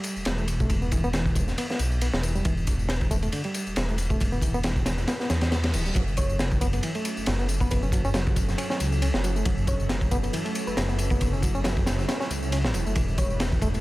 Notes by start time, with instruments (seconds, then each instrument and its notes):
Already playing: reed electric piano G3
0.04 ride, tambourine
0.16 detuned saw bass E1, tambourine
0.25 detuned saw bass E1, snare, ride, tambourine
0.38 reed electric piano A3, tambourine
0.48 ride, tambourine
0.60 reed electric piano A3, kick, tambourine
0.70 detuned saw bass E1, kick, ride, tambourine
0.82 reed electric piano B3, tambourine
0.91 reed electric piano E3, kick, ride, tambourine
1.04 reed electric piano B3, tambourine
1.13 reed electric piano E3, snare, ride, tambourine
1.26 kick, tambourine
1.35 kick, ride, tambourine
1.48 snare, tambourine
1.58 reed electric piano B3, ride, tambourine
1.70 reed electric piano B3, snare, tambourine
1.79 detuned saw bass B1, ride, tambourine
1.91 tambourine
2.01 reed electric piano B3, ride, tambourine
2.13 detuned saw bass E1, snare, tambourine
2.23 reed electric piano E3, ride, tambourine
2.35 reed electric piano G3, tambourine
2.45 detuned saw bass E1, reed electric piano E3, kick, ride, tambourine
2.57 tambourine
2.67 kick, ride, tambourine
2.79 tambourine
2.89 snare, ride, tambourine
3.01 kick, tambourine
3.11 reed electric piano A3, kick, ride, tambourine
3.22 reed electric piano A3, ride, tambourine
3.32 reed electric piano D3, ride, tambourine
3.44 reed electric piano G3, ride, tambourine
3.54 ride, tambourine
3.67 detuned saw bass E1, tambourine
3.76 detuned saw bass E1, snare, ride, tambourine
3.88 reed electric piano A3, tambourine
3.98 ride, tambourine
4.10 reed electric piano A3, kick, tambourine
4.20 detuned saw bass E1, kick, ride, tambourine
4.32 reed electric piano B3, tambourine
4.42 reed electric piano E3, kick, ride, tambourine
4.54 reed electric piano B3, tambourine
4.63 reed electric piano E3, snare, ride, tambourine
4.76 kick, tambourine
4.86 snare, ride, tambourine
4.98 snare, tambourine
5.08 reed electric piano B3, snare, ride, tambourine, reverse cymbal
5.20 reed electric piano B3, snare, tambourine
5.30 detuned saw bass E2, snare, ride, tambourine
5.41 snare, ride, tambourine
5.52 reed electric piano B3, snare, ride, tambourine
5.64 snare, ride, tambourine
5.73 detuned saw bass D1, reed electric piano E3, ride, tambourine
5.86 reed electric piano G3, tambourine
5.95 detuned saw bass F#1, analog synth pad F#3 C#4 E4 A4, reed electric piano F#3, kick, ride, tambourine
6.08 tambourine
6.17 synth pluck C#5, kick, ride, tambourine
6.29 tambourine
6.39 snare, ride, tambourine
6.51 kick, tambourine
6.61 reed electric piano B3, kick, ride, tambourine
6.73 reed electric piano B3, ride, tambourine
6.83 reed electric piano E3, ride, tambourine
6.95 reed electric piano A3, ride, tambourine
7.05 ride, tambourine
7.17 detuned saw bass F#1, tambourine
7.26 detuned saw bass F#1, snare, ride, tambourine
7.39 reed electric piano B3, tambourine
7.49 ride, tambourine
7.60 reed electric piano B3, synth pluck B4, kick, tambourine
7.71 detuned saw bass F#1, synth pluck B4, kick, ride, tambourine
7.83 reed electric piano C#4, tambourine
7.92 reed electric piano F#3, kick, ride, tambourine
8.05 reed electric piano C#4, tambourine
8.14 reed electric piano F#3, snare, ride, tambourine
8.26 kick, tambourine
8.36 kick, ride, tambourine
8.48 snare, tambourine
8.58 reed electric piano C#4, ride, tambourine
8.70 reed electric piano C#4, snare, tambourine
8.80 detuned saw bass C#2, ride, tambourine
8.92 tambourine
9.02 reed electric piano C#4, ride, tambourine
9.14 detuned saw bass F#1, snare, tambourine
9.24 reed electric piano F#3, ride, tambourine
9.36 reed electric piano A3, tambourine
9.45 detuned saw bass F#1, reed electric piano F#3, kick, ride, tambourine
9.58 tambourine
9.67 synth pluck C#5, kick, ride, tambourine
9.80 tambourine
9.89 snare, ride, tambourine
10.01 kick, tambourine
10.11 reed electric piano B3, kick, ride, tambourine
10.23 reed electric piano B3, ride, tambourine
10.33 reed electric piano E3, ride, tambourine
10.45 reed electric piano A3, ride, tambourine
10.55 ride, tambourine
10.67 detuned saw bass F#1, synth pluck B4, tambourine
10.77 detuned saw bass F#1, snare, ride, tambourine
10.89 reed electric piano B3, tambourine
10.99 ride, tambourine
11.10 reed electric piano B3, kick, tambourine
11.21 detuned saw bass F#1, kick, ride, tambourine
11.33 reed electric piano C#4, tambourine
11.43 reed electric piano F#3, kick, ride, tambourine
11.55 reed electric piano C#4, tambourine
11.64 reed electric piano F#3, snare, ride, tambourine
11.77 kick, tambourine
11.86 snare, ride, tambourine
11.99 snare, tambourine
12.08 reed electric piano C#4, snare, ride, tambourine
12.20 reed electric piano C#4, snare, tambourine
12.30 detuned saw bass C#2, ride, tambourine
12.42 tambourine
12.52 reed electric piano C#4, ride, tambourine
12.64 detuned saw bass A1, snare, tambourine
12.74 detuned saw bass E1, reed electric piano F#3, ride, tambourine
12.86 detuned saw bass F#1, reed electric piano A3, tambourine
12.95 detuned saw bass E1, reed electric piano E3, analog synth pad G3 B3 B4, kick, ride, tambourine
13.08 tambourine
13.18 synth pluck C#5, kick, ride, tambourine
13.30 tambourine
13.40 snare, ride, tambourine
13.52 kick, tambourine
13.62 reed electric piano A3, kick, ride, tambourine
13.74 reed electric piano A3, ride, tambourine